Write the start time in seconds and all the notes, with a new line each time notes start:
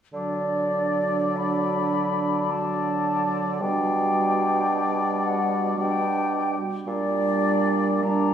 0.13 D3 F#3 D4 D5
1.37 B5
2.51 F#3 D4 D5 A5
3.59 B2 G3 D4 D5 G5
5.24 F#5
5.78 G3 D4 D5 G5
6.86 A#2 G3 D4 D5
8.03 G3 D4 D5 A#5